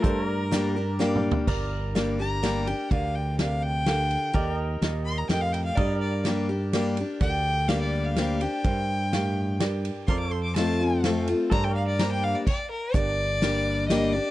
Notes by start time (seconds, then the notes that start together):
Already playing: A#4
0.02 G2 G4 A4 A#4 C5 D5, kick, closed hi-hat
0.22 A#4
0.28 D5
0.51 G3 A#3 D4 G4 A#4 D5, snare, closed hi-hat
0.75 D4 G4 A#5
0.99 G3 A#3 D4 G4 A#4 D5 F5, snare
1.15 mid tom
1.31 floor tom
1.47 G1 G2 G4 A#4 D5, kick, crash
1.94 G3 A#3 D4 G4 A#4 D5, snare, ride
2.19 D4 G4 A#5
2.42 G3 A#3 D4 G4 A#4 D5, snare, ride
2.67 D4 G4 G5, ride
2.91 D2 D3 G4 A#4 D5 F5, kick, ride
3.15 G5
3.39 C3 G4 A#4 D5 F5, snare, ride
3.62 G5
3.86 D3 G4 A#4 F5, snare, ride
4.11 ride
4.33 D#2 D#3 G4 A#4 D5 D#5, kick, ride
4.55 D#5
4.81 D#2 A#2 G4 A#4 D#5, snare, ride
5.05 C6
5.18 A#5
5.29 F2 A2 G4 A#4 D#5 G5, snare, ride
5.41 F5
5.53 G5, ride
5.64 F5
5.75 G2 G4 A#4 D5 D#5, kick, ride
5.98 D5
6.25 G3 A#3 D4 G4 A#4 D5, snare, ride
6.49 D4 G4
6.73 G3 A#3 D4 G4 A#4 D5, snare, ride
6.97 D4 G4, ride
7.20 D2 D3 G4 A#4 D5 G5, kick, ride
7.68 G3 A#3 D4 G4 A#4 D5 F5, snare, ride
7.81 D5
8.05 F5
8.16 G3 A#3 D4 G4 A#4 C5, snare, ride
8.41 D4 G4 G5, ride
8.64 G2 G4 A#4 C5, kick, ride
9.12 A2 G4 A#4 F5, snare, ride
9.60 G2 G4 A#4 D5 G5, snare, ride
9.85 ride
10.07 F2 F4 A4 A#4 C5 D5 C6, kick, ride
10.20 D6
10.29 A4 C6
10.35 C5
10.43 D6
10.55 F3 A3 C4 F4 A4 D#5 A5, snare, ride
10.81 C4 F4
11.04 F3 A3 C4 F4 A4 C5, snare, ride
11.27 C4 F4, ride
11.50 G2 G4 A4 A#4 C5 D5 A#5, kick, ride
11.64 G5
11.70 A#4
11.75 D5 F5
11.87 D5
11.99 G3 A#3 D4 G4 A#4 C5 A#5, snare, ride
12.12 G5
12.24 F5
12.35 D5
12.46 D5, kick, crash
12.70 A#4
12.94 G1 G2 D4 G4 A#4 D5, kick, closed hi-hat
13.42 G3 A#3 D4 G4 A#4 D5, snare, closed hi-hat
13.88 G3 A#3 D4 G4 A#4 D5 D#5, snare, closed hi-hat
14.12 G4 D5
14.16 D4